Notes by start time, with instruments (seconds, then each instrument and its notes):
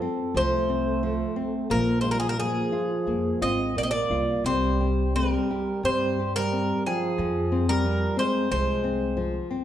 Already playing: trombone F3, bouzouki A4
0.02 nylon-string guitar C4
0.34 upright bass C2, nylon-string guitar F3, trombone A3, bouzouki C5
0.69 nylon-string guitar C4
1.03 nylon-string guitar F3
1.36 nylon-string guitar C4
1.70 upright bass A#1, trombone F3, nylon-string guitar A#3, bouzouki A#4
2.01 trombone G#3, nylon-string guitar F4, bouzouki C5
2.10 trombone G3, bouzouki A#4
2.20 trombone F3, bouzouki G#4
2.29 trombone G3, bouzouki A#4
2.39 trombone F3, nylon-string guitar A#3, bouzouki G#4
2.72 nylon-string guitar F4
3.07 upright bass F2, nylon-string guitar A#3
3.41 upright bass G#1, trombone C4, nylon-string guitar F4, bouzouki D#5
3.75 upright bass A#1, nylon-string guitar A#3, trombone A#3, bouzouki D5
3.83 trombone C4, bouzouki D#5
3.91 trombone A#3, bouzouki D5
4.10 upright bass C2, nylon-string guitar F4
4.44 upright bass C2, trombone G3, nylon-string guitar C4, bouzouki C5
4.81 nylon-string guitar G4
5.16 trombone G3, nylon-string guitar C4, bouzouki A#4
5.51 nylon-string guitar G4
5.83 upright bass G2, trombone G3, nylon-string guitar C4, bouzouki C5
6.19 nylon-string guitar G4
6.36 trombone G3, bouzouki A#4
6.53 nylon-string guitar C4
6.86 trombone F3, bouzouki G#4, nylon-string guitar G5
7.18 upright bass F2, nylon-string guitar F3
7.52 nylon-string guitar C4
7.69 trombone G3, bouzouki A#4
7.85 nylon-string guitar F3
8.17 trombone G#3, nylon-string guitar C4, bouzouki C5
8.51 upright bass C2, nylon-string guitar F3, trombone G#3, bouzouki C5
8.84 nylon-string guitar C4
9.17 nylon-string guitar F3
9.51 nylon-string guitar C4